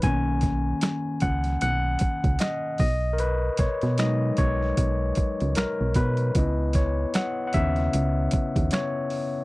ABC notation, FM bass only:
X:1
M:4/4
L:1/16
Q:"Swing 16ths" 1/4=76
K:B
V:1 name="FM bass" clef=bass
B,,,4 z2 C,,2 B,,,2 z C,, z2 B,,,2- | B,,,2 B,, B,,3 B,,,2 B,,,2 z C,, z B,,, B,,2 | C,,4 z2 D,,2 C,,2 z D,, z4 |]